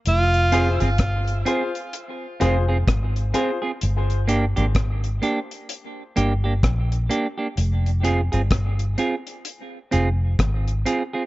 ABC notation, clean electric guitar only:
X:1
M:4/4
L:1/16
Q:"Swing 16ths" 1/4=64
K:Fdor
V:1 name="Clean electric guitar"
z2 [CFA] [CFA] z2 [CFA] z3 [CFA] [CFA] z2 [CFA] [CFA] | z2 [B,DG] [B,DG] z2 [B,DG] z3 [B,DG] [B,DG] z2 [B,DG] [B,DG] | z2 [CFA] [CFA] z2 [CFA] z3 [CFA] z3 [CFA] [CFA] |]